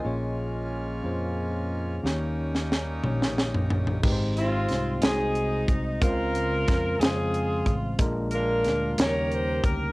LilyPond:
<<
  \new Staff \with { instrumentName = "Saxophone section" } { \time 6/8 \key aes \major \tempo 4. = 60 << { r2. | r2. | r8 f'4 aes'4 r8 | bes'4. aes'4 r8 |
r8 bes'4 des''8 c''8 bes'8 | } \\ { r2. | r2. | r8 c'4 ees'4. | f'4. <c' f'>4. |
r8 <d' f'>4 <g' bes'>4. | } >> }
  \new Staff \with { instrumentName = "Tine electric piano" } { \time 6/8 \key aes \major << { <ees'' aes''>16 r2 r8. | r2. | r2. | r2. |
r2. | } \\ { <bes des' f' aes' des''>4 r8 <bes des' f' aes' c''>4 r8 | <bes des' ees' g' des''>4 r8 <bes des' ees' g' des''>4 r8 | <aes c' ees' g' ces'' c''>4 r8 <aes c' ees' ges' c''>4 r8 | <aes c' des' f' c''>4 r8 <des aes c' f' c''>4 r8 |
<aes bes d' f' bes'>4 r8 <g bes des' ees' bes'>4 r8 | } >> }
  \new Staff \with { instrumentName = "Tine electric piano" } { \clef bass \time 6/8 \key aes \major bes,4. r4. | ees4. r4. | aes,4. c4. | des4. r4. |
bes,4. des4. | }
  \new Staff \with { instrumentName = "Accordion" } { \time 6/8 \key aes \major <aes des' f'>2. | <g des' ees'>2. | r2. | r2. |
r2. | }
  \new Staff \with { instrumentName = "Accordion" } { \time 6/8 \key aes \major bes2.~ | bes2. | r2. | r2. |
r2. | }
  \new Staff \with { instrumentName = "Fingered electric bass" } { \clef bass \time 6/8 \key aes \major bes,,4. f,4. | ees,4. bes,,4. | aes,,4 c,8 c,4 c,8 | des,4 f,8 f,4 a,,8 |
bes,,4 d,8 ees,4 d,8 | }
  \new DrumStaff \with { instrumentName = "Drums" } \drummode { \time 6/8 r4. r4. | sn8. sn16 sn8 toml16 sn16 sn16 tomfh16 tomfh16 tomfh16 | <cymc bd>8 hh8 <hh sn>8 <hh sn>8 hh8 <hh bd>8 | <hh bd>8 hh8 <hh bd sn>8 <hh sn>8 hh8 <hh bd>8 |
<hh bd>8 hh8 <hh sn>8 <hh sn>8 hh8 <hh bd>8 | }
>>